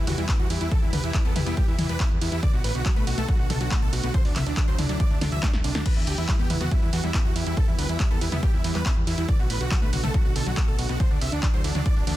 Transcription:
Already playing: E3 G3 B3 G4
0.07 E2 E3 F#4, open hi-hat, mid tom, ride
0.18 E2 G3 E4, closed hi-hat
0.29 B3 E4, kick, clap, closed hi-hat
0.39 E2 F#4
0.50 E2 E4, open hi-hat, ride
0.61 E2 E4, closed hi-hat
0.71 E3 A4, kick, closed hi-hat
0.82 E2 E4
0.93 D2 B4, open hi-hat, mid tom, ride
1.04 E2 E4, closed hi-hat
1.14 G3 E4, kick, clap, closed hi-hat
1.25 E2 B3 A4
1.36 E2 E4 B4, open hi-hat, mid tom, ride
1.46 E2 B3 E4, closed hi-hat
1.57 G3 G4, kick, closed hi-hat
1.68 E2 E4
1.79 E2 E3 E4, open hi-hat, mid tom, ride
1.89 E2 G3 B4, closed hi-hat
2.00 B3 E4, kick, clap, closed hi-hat
2.11 E2
2.21 E2 E4, open hi-hat, ride
2.32 E2 E4, closed hi-hat
2.43 D3 A3 F#4 D5, kick, closed hi-hat
2.54 B1 F#4
2.64 A1 B4, open hi-hat, ride
2.75 B1 F#4, closed hi-hat
2.86 F#3 F#4, kick, clap, closed hi-hat
2.96 B1 A3 B4
3.07 B1 F#4, open hi-hat, ride
3.18 B1 A3 A4, closed hi-hat
3.28 F#3 F#4, kick, closed hi-hat
3.39 B1 F#4
3.50 B1 D3 A4, open hi-hat, mid tom, ride
3.61 B1 F#3 F#4, closed hi-hat
3.71 A3 F#4, kick, clap, closed hi-hat
3.82 B1 A4
3.93 B1 F#4, open hi-hat, ride
4.03 B1 B3 F#4, closed hi-hat
4.14 D3 F#3 E4 C5, kick, closed hi-hat
4.25 D2 D4, open hi-hat
4.36 C2 E5, clap, open hi-hat, mid tom, ride
4.46 D2 D4, closed hi-hat
4.57 E3 D4, kick, clap, closed hi-hat
4.68 D2 F#3 C5
4.78 D2 D4 E4, open hi-hat, mid tom, ride
4.89 D2 F#3 D4, closed hi-hat
5.00 E3 D5, kick, closed hi-hat
5.11 D2 D4
5.21 D2 D3 D4, snare, open hi-hat, mid tom, ride
5.32 D2 E3 E5, closed hi-hat
5.43 F#3 D4, kick, snare, clap, closed hi-hat
5.54 D1, snare
5.64 C2 D4, open hi-hat, ride
5.75 D2 A3 D4, snare, closed hi-hat
5.86 E3 G3 B3 G4 B4, kick, closed hi-hat, crash
5.97 E2 E4
6.07 D2 G4, open hi-hat, ride
6.18 E2 E4, closed hi-hat
6.29 G3 E4, kick, clap, closed hi-hat
6.39 E2 B3 G4
6.50 E2 E4 B4, open hi-hat, mid tom, ride
6.61 E2 B3 F#4, closed hi-hat, mid tom
6.71 G3 E4, kick, closed hi-hat
6.82 E2 E4
6.93 E2 E3 F#4, open hi-hat, ride
7.04 E2 G3 E4
7.14 B3 E4, kick, clap, closed hi-hat
7.25 E2 F#4
7.36 E2 E4, open hi-hat, ride
7.46 E2 E4, closed hi-hat
7.57 E3 A4, kick, closed hi-hat
7.68 E2 E4
7.79 D2 B4, open hi-hat, ride
7.89 E2 E4, closed hi-hat
8.00 G3 E4, kick, clap, closed hi-hat
8.11 E2 B3 A4
8.21 E2 E4 B4, open hi-hat, ride
8.32 E2 B3 E4, closed hi-hat, mid tom
8.43 G3 G4, kick, closed hi-hat
8.54 E2 E4
8.64 E2 E3 E4, open hi-hat, ride
8.75 E2 G3 B4, clap, closed hi-hat
8.86 B3 E4, kick, clap, closed hi-hat
8.96 E2
9.07 E2 E4, open hi-hat, ride
9.18 E2 E4, closed hi-hat
9.28 D3 A3 F#4 D5, kick, closed hi-hat
9.39 B1 F#4
9.50 A1 B4, open hi-hat, ride
9.61 B1 F#4, closed hi-hat
9.71 F#3 F#4, kick, clap, closed hi-hat
9.82 B1 A3 B4
9.93 B1 F#4, open hi-hat, mid tom, ride
10.04 B1 A3 A4, closed hi-hat, mid tom
10.14 F#3 F#4, kick, closed hi-hat
10.25 B1 F#4
10.36 B1 D3 A4, open hi-hat, ride
10.46 B1 F#3 F#4, closed hi-hat
10.57 A3 F#4, kick, clap, closed hi-hat
10.68 B1 A4
10.79 B1 F#4, open hi-hat, ride
10.89 B1 B3 F#4, closed hi-hat
11.00 D3 E3 D4 C5, kick, closed hi-hat
11.11 D2 D4
11.21 C2 E5, open hi-hat, ride
11.32 D2 D4, closed hi-hat
11.43 E3 D4, kick, clap, closed hi-hat
11.54 D2 F#3 C5
11.64 D2 D4 E4, open hi-hat, ride
11.75 D2 F#3 D4, closed hi-hat, mid tom
11.86 E3 D5, kick, closed hi-hat
11.96 D1 D4
12.07 D2 E3 D4, open hi-hat, ride

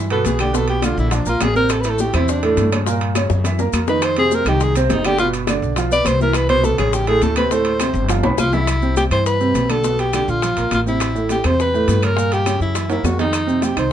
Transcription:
Already playing: G2
0.10 B2 B3 A4 B4, high conga, high timbale
0.25 B1 G#4, high bongo, low bongo, high conga, high timbale, maracas
0.39 D3 D4 G4 D5, high bongo, high conga, high timbale, claves, maracas
0.53 B2 B3 A4 B4, high bongo, high conga, maracas
0.68 G4, high bongo, high conga, high timbale
0.82 D3 D4 F4 D5, high bongo, high conga, high timbale, claves, maracas
0.97 A#1 E4, high bongo, maracas
1.11 F3 D4 F4 F5, high bongo, high conga, high timbale, maracas
1.26 A#1 A#3 F4 A#4 A#5, high conga, maracas
1.41 A1 G#4, high bongo, low bongo, high conga, high timbale, low timbale, claves, maracas
1.55 C3 C4 A#4 C5, high bongo, maracas
1.69 A4, high bongo, high timbale, claves, maracas
1.81 A2 B4, high bongo, maracas
1.85 A3 A4, high conga, high timbale
1.90 A4
1.99 G4, high bongo, high conga, maracas
2.13 E2 C3 C4 E4 C5, high bongo, high conga, low conga, high timbale, claves, maracas
2.28 D4, high bongo, high conga, maracas
2.43 A2 A3 A4, high conga, high timbale
2.57 G2, high bongo, low bongo, high conga, high timbale, maracas
2.72 C#3 C#4 C#5, high bongo, high conga, high timbale, claves, maracas
2.86 A#2 A#3 A#4, high bongo, high conga, maracas
3.00 high bongo, high conga, high timbale
3.15 C#3 C#4 C#5, high bongo, high conga, high timbale, claves, maracas
3.30 F#2, high bongo, maracas
3.44 E3 E4 E5, low bongo, high conga, high timbale, maracas
3.59 A#3 A#4 A#5, high bongo, high conga, maracas
3.73 F2, high conga, high timbale, claves, maracas
3.87 D#3 D#4 B4 D#5, low bongo, maracas
4.02 C5, high bongo, high timbale, claves, maracas
4.17 C3 C4 G#4 C5, high bongo, high conga, high timbale
4.31 A#4, high bongo, high conga, maracas
4.45 C2 D#3 D#4 G4 D#5, high bongo, high conga, low conga, high timbale, claves, maracas
4.60 G#4, high bongo, high conga, maracas
4.76 C3 C4 C5, high conga, high timbale, maracas
4.89 G1 D#4, high bongo, low bongo, high conga, high timbale, low timbale, maracas
5.05 D3 D4 G4 D5, high bongo, high conga, high timbale, claves, maracas
5.18 B2 B3 F4 B4, high bongo, high conga, maracas
5.33 high bongo, high timbale, maracas
5.47 D3 D4 D5, high bongo, high conga, high timbale, claves, maracas
5.62 B1, high bongo, maracas
5.76 F3 F4 F5, high bongo, high conga, high timbale, maracas
5.91 B3 B4 D5 B5, high conga, maracas
6.05 C2 C5, high bongo, low bongo, high conga, high timbale, claves, maracas
6.19 E3 E4 A#4 E5, high bongo, high conga, maracas
6.33 B4, high bongo, high conga, high timbale, claves, maracas
6.49 B2 B3 B4 C5, high bongo, high conga, high timbale
6.64 A4, high bongo, high conga, maracas
6.78 A1 C#3 C#4 G#4 C#5, high bongo, high conga, low conga, high timbale, claves, maracas
6.93 G4, high bongo, high conga, low conga, maracas
7.07 A2 A3 G#4 A4, high conga, high timbale
7.21 D2 A4, high bongo, low bongo, high conga, high timbale, maracas
7.36 C3 C4 B4 C5, high bongo, high conga, high timbale, claves, maracas
7.51 A2 A3 A4 C5, high bongo, high conga, maracas
7.65 high bongo, high conga, high timbale
7.80 C3 C4 C5, high bongo, high conga, high timbale, claves, maracas
7.94 G1, high bongo, maracas
8.09 F3 F4 F5, high bongo, high conga, high timbale, maracas
8.23 B1 B3 B4 B5, high bongo, high conga, high timbale
8.38 C2 F4, high bongo, high conga, claves, maracas
8.53 E3 E4 E5, low bongo, low conga, low timbale, maracas
8.67 high bongo, high conga, high timbale, claves, maracas
8.82 C3 C4, high bongo, high conga, maracas
8.96 G4, high bongo, high conga, high timbale, maracas
9.11 G2 E3 E4 C5, high timbale, claves, maracas
9.26 B4, high bongo, high conga, maracas
9.40 C3 C4, high bongo, high conga, maracas
9.54 B1, high bongo, low bongo, high conga, high timbale, maracas
9.69 D3 D4 A4, high bongo, high conga, high timbale, claves, maracas
9.84 B2 B3, high bongo, high conga, maracas
9.99 G4, high bongo, high conga, high timbale, maracas
10.13 D3 D4 G4, high bongo, high conga, high timbale, claves, maracas
10.28 A#1 F4, high conga, maracas
10.42 F3 F4, high bongo, high conga, high timbale, maracas
10.57 A#1 A#3 A#4, high bongo, high conga, high timbale, maracas
10.71 A1 F4, high bongo, low bongo, high conga, high timbale, claves, maracas
10.86 C3 C4 E4, high bongo, high conga, maracas
11.00 high bongo, high conga, high timbale, claves, maracas
11.15 A2 A3, high bongo, high conga, maracas
11.29 G4, high bongo, high conga, high timbale, maracas
11.44 E2 C3 C4 C5, high timbale, claves, maracas
11.60 B4, high bongo, high conga, maracas
11.74 A2 A3, high bongo, high conga, maracas
11.88 G2, high bongo, low bongo, high conga, high timbale, maracas
12.02 C#3 C#4 A#4, high bongo, high conga, high timbale, claves, maracas
12.16 A#2 A#3, high bongo, high conga, maracas
12.32 G4, high bongo, high timbale, maracas
12.46 C#3 C#4, high bongo, high conga, high timbale, claves, maracas
12.60 F#2 E4, high conga, maracas
12.75 E3 E4, high bongo, high conga, high timbale, maracas
12.89 A#3 E4 A#4, high bongo, high conga, high timbale, maracas
13.04 F2 F#4, high bongo, low bongo, high conga, low timbale, claves, maracas
13.18 D#3 D#4, high bongo, low timbale, maracas
13.33 high bongo, high conga, high timbale, claves, maracas
13.47 C3 C4, high bongo, high conga, maracas
13.62 G4, high bongo, high conga, high timbale, maracas
13.76 C2 D#3 D#4 C5, high timbale, claves, maracas

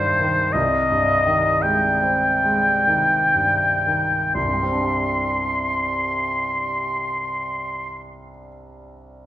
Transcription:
Already playing: C2 G2 D#3 G3 D4 C5
0.20 D#3
0.52 C2 D#5
0.91 G2
1.26 D#3
1.62 G#3 G5
2.02 C4
2.44 G#3
2.87 D#3
3.35 G2
3.87 D#3
4.34 C2 C6
4.44 G2
4.53 G3
4.63 C4
4.72 D4
4.81 G4

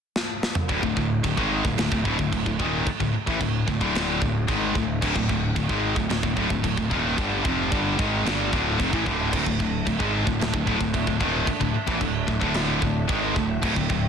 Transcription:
0.16 snare
0.43 snare
0.55 mid tom
0.69 D1 D2 A2, kick, china
0.83 D1 D2 A2, kick
0.96 D1 D2 A2, kick
1.24 D1 D2 A2, kick, china
1.37 G#1 G#2 D#3 G#3, kick
1.64 D1 D2 A2, kick
1.78 D1 D2 A2, snare, china
1.92 D1 D2 A2, kick
2.05 D1 D2 A2, kick
2.19 D1 D2 A2, kick
2.32 D1 D2 A2, kick, china
2.46 D1 D2 A2, kick
2.59 D#1 D#2 A#2 D#3, kick
2.86 muted distorted electric guitar stroke, muted picked electric bass stroke, kick, china
3.00 D1 D2 A2, kick
3.13 muted distorted electric guitar stroke, muted picked electric bass stroke
3.27 A1 A2 E3, kick
3.40 D1 D2 A2, kick, china
3.67 D1 D2 A2, kick
3.80 D1 D2 A2 D3, kick
3.95 snare, china
4.21 D1 D2 A2, kick
4.48 G#1 G#2 D#3 G#3, kick, china
4.75 D1 D2 A2, kick
5.02 D1 D2 A2, kick, crash, china
5.16 D1 D2 A2, kick
5.29 D1 D2 A2, kick
5.55 D1 D2 A2, kick, china
5.69 G#1 G#2 D#3 G#3, kick
5.96 D1 D2 A2, kick
6.09 D1 D2 A2, snare, china
6.23 D1 D2 A2, kick
6.36 D1 D2 A2, kick
6.50 D1 D2 A2, kick
6.63 D1 D2 A2, kick, china
6.77 D1 D2 A2, kick
6.90 D#1 D#2 A#2 D#3, kick
7.17 G1 G2 D3 G3, kick, china
7.43 F1 F2 C3 F3, kick
7.71 G1 G2 D3 G3, kick, china
7.98 G#1 G#2 D#3 G#3, kick
8.25 G1 G2 D3 G3, snare, china
8.52 D1 D2 A2 D3, kick
8.78 F1 F2 C3, kick, china
8.92 A1 A2 E3, kick
9.05 D1 D2 A2 D3, kick
9.32 D1 D2 A2 D4 A4 E5, kick, china, crash
9.46 D1 D2 A2, kick
9.59 D1 D2 A2, kick
9.85 D1 D2 A2, kick, china
9.98 G#1 G#2 D#3 G#3, kick
10.26 D1 D2 A2, kick
10.39 D1 D2 A2, snare, china
10.53 D1 D2 A2, kick
10.67 D1 D2 A2, kick
10.80 D1 D2 A2, kick
10.93 D1 D2 A2, kick, china
11.06 D1 D2 A2, kick
11.19 D#1 D#2 A#2 D#3, kick
11.46 muted distorted electric guitar stroke, muted picked electric bass stroke, kick, china
11.60 D1 D2 A2, kick
11.74 muted distorted electric guitar stroke, muted picked electric bass stroke
11.86 A1 A2 E3, kick
12.00 D1 D2 A2, kick, china
12.27 D1 D2 A2, kick
12.39 D1 D2 A2 D3, kick
12.54 snare, china
12.81 D1 D2 A2, kick
13.08 G#1 G#2 D#3 G#3, kick, china
13.35 D1 D2 A2, kick
13.62 D1 D2 A2 G4, kick, china, crash
13.75 D1 D2 A2, kick
13.89 D1 D2 A2, kick

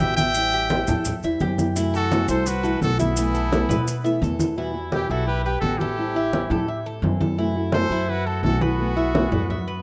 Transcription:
Already playing: G4 G5
0.00 A1 E3 G3 B3 F#4 E5, high conga
0.16 G3 B3 F#4 E5 G5, high conga, maracas
0.34 E3 G3 C4 E4, high conga, maracas
0.52 G4, high conga, maracas
0.69 E3 G3 C4 E4, high conga, maracas
0.87 E2 G3 C4 E4 A4, low conga, maracas
1.05 muted nylon-string guitar stroke, high conga, low conga, maracas
1.23 E2 G3 C4 E4 E5, high conga, maracas
1.40 F#2 E3 G3 C4 E4 G4, high conga, maracas
1.58 G3 C4 E4, high conga, maracas
1.76 C3 E3 A3 E4 F#4, high conga, maracas
1.94 F#4 A4, high conga, maracas
2.11 C3 E3 A3 E4 F#4, high conga, maracas
2.28 C2 A3 E4 F#4 A4 C5, high conga, maracas
2.46 F#4 B4, muted nylon-string guitar stroke, high conga, maracas
2.63 E3 A3 E4 F#4 A4, high conga, maracas
2.81 B1 E3 A3 E4 F#4 A4, high conga, maracas
2.98 A3 B3 E4 F#4 E5, high conga, maracas
3.17 B2 E3 A3 B3 E4, high conga, maracas
3.35 A4, high conga, maracas
3.51 B2 E3 A3 B3 E4, high conga, maracas
3.69 B2 A3 B3 E4 B4, low conga, maracas
3.87 muted nylon-string guitar stroke, high conga, maracas
4.04 E3 A3 B3 E4 E5, high conga, maracas
4.22 E2 E3 A3 B3 E4 A4, high conga, maracas
4.39 A3 B3 E4, high conga, maracas
4.57 B2 E3 G3 B3 E4 F#4, high conga
4.74 G3 B3 F#4, high conga
4.92 B2 E3 G3 B3 E4 F#4 G4, high conga
5.09 B1 G3 B3 E4 F#4 A4, high conga
5.26 G4 B4, muted nylon-string guitar stroke, high conga
5.45 G4 B4, high conga
5.60 A1 B2 E3 G3 B3 F#4 A4, high conga
5.78 G3 B3 E4 F#4 G4 A4, high conga
5.98 E3 G3 C4 E4, high conga
6.15 G3 C4 E4 E5, high conga
6.32 E3 G3 C4 E4, high conga
6.50 A2 G3 C4 E4 A4, low conga
6.67 E5, muted nylon-string guitar stroke, high conga
6.86 A4, high conga
7.02 F#2 E3 G3 C4 E4, high conga
7.20 G3 C4 E4 A4, high conga
7.38 C3 E3 A3 E4 F#4, high conga
7.55 A3 E4 F#4, high conga
7.72 C3 E3 A3 E4 F#4 A4 C5, high conga
7.90 F#2 A3 E4 F#4, high conga
8.08 F#4 B4, muted nylon-string guitar stroke, high conga
8.26 F#4 A4, high conga
8.43 B1 C3 E3 A3 E4 F#4 A4, high conga
8.61 A3 B3 E4 F#4 B4, high conga
8.78 B2 E3 A3 B3 E4, high conga
8.96 A3 B3 E4 E5, high conga
9.14 B2 E3 A3 B3 E4, high conga
9.31 F#2 A3 B3 E4 B4, low conga
9.49 E5, muted nylon-string guitar stroke, high conga, low conga
9.67 B4, high conga

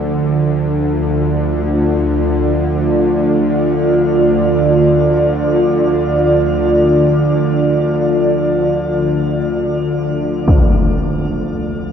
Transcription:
Already playing: D2 D3 F4 A4 D5
10.48 D2 D3, impact

